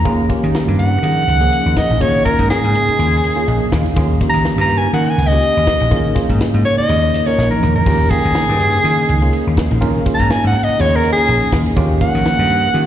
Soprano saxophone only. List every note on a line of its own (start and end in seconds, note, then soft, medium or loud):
0.00 0.27 A#5 loud
0.79 1.74 F#5 loud
1.77 2.03 D#5 medium
2.01 2.24 C#5 medium
2.25 2.49 A#4 medium
2.50 3.92 G#4 loud
4.30 4.45 A#5 loud
4.61 4.79 A#5 loud
4.78 4.93 G#5 medium
4.94 5.12 F#5 medium
5.10 5.29 G#5 medium
5.27 6.21 D#5 loud
6.65 6.77 C#5 loud
6.78 7.27 D#5 loud
7.26 7.50 C#5 medium
7.50 7.74 A#4 medium
7.76 8.12 A#4 medium
8.10 9.53 G#4 loud
10.14 10.32 A#5 loud
10.31 10.46 G#5 medium
10.47 10.65 F#5 medium
10.64 10.82 D#5 medium
10.81 10.97 C#5 medium
10.96 11.11 A#4 medium
11.12 11.59 G#4 loud
12.02 12.86 F#5 loud